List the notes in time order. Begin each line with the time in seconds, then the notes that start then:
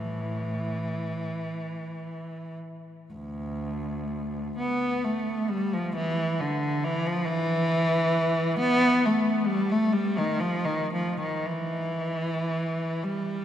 Already playing: A2 E3
3.13 D2
4.58 B3
5.04 A3
5.49 G3
5.73 F3
5.96 E3
6.40 D3
6.84 E3
7.06 F3
7.25 E3
8.60 B3
9.05 A3
9.46 G3
9.72 A3
9.93 G3
10.18 D#3
10.39 F3
10.65 D#3
10.93 F3
11.20 D#3
11.45 E3
13.04 G3